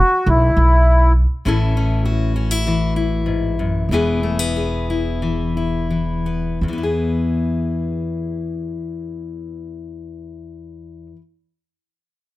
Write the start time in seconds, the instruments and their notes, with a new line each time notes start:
Already playing: accordion F#4
0.26 upright bass B1, accordion E4
0.57 upright bass B1
1.45 upright bass A1, steel-string acoustic guitar A2 E3 C#4 E4 A4
1.77 steel-string acoustic guitar C#4
2.05 steel-string acoustic guitar F#4
2.36 steel-string acoustic guitar C#4
2.51 steel-string acoustic guitar E4
2.67 steel-string acoustic guitar E3
2.96 steel-string acoustic guitar E4
3.26 steel-string acoustic guitar G#2
3.59 steel-string acoustic guitar F#2
3.89 upright bass E1, steel-string acoustic guitar E2 E3
3.93 steel-string acoustic guitar B3 E4 G#4
4.23 steel-string acoustic guitar A3
4.39 steel-string acoustic guitar B3
4.56 steel-string acoustic guitar G#4
4.90 steel-string acoustic guitar E4
5.22 steel-string acoustic guitar E3
5.57 steel-string acoustic guitar E4
5.90 steel-string acoustic guitar E3
6.26 steel-string acoustic guitar B3
6.61 upright bass E2, steel-string acoustic guitar E2
6.68 steel-string acoustic guitar E3
6.73 steel-string acoustic guitar B3
6.78 steel-string acoustic guitar E4
6.83 steel-string acoustic guitar G#4